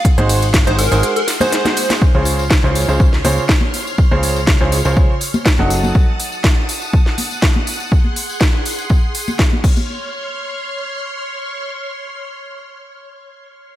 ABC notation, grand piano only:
X:1
M:4/4
L:1/16
Q:"Swing 16ths" 1/4=122
K:Db
V:1 name="Grand piano"
z [A,EGAc]2 z2 [A,EGAc] z [A,EGAc]2 z2 [A,EGAc]4- [A,EGAc] | z [D,DFAc]2 z2 [D,DFAc]2 [D,DFAc] z2 [D,DFAc] z4 z | z [D,DFAc]2 z2 [D,DFAc] z [D,DFAc]2 z4 [G,EG=Ag]3- | [G,EG=Ag] z12 z3 |
z16 | z16 | z16 |]